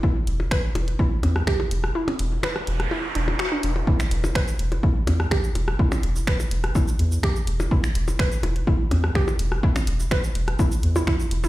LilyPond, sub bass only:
\new Staff \with { instrumentName = "Sub bass" } { \clef bass \time 4/4 \key e \minor \tempo 4 = 125 r8 e,,8 r8 e,,8 r8 e,8 r8 e,,8 | r8 e,,8 r8 e,,8 r8 e,,8 r8 e,,8 | r8 e,,8 r8 e,,8 r8 e,8 r8 e,,8 | r8 e,,8 r8 e,,8 r8 e,8 r8 e,,8 |
r8 e,,8 r8 e,,8 r8 e,8 r8 e,,8 | r8 e,,8 r8 e,,8 r8 e,8 r8 e,,8 | }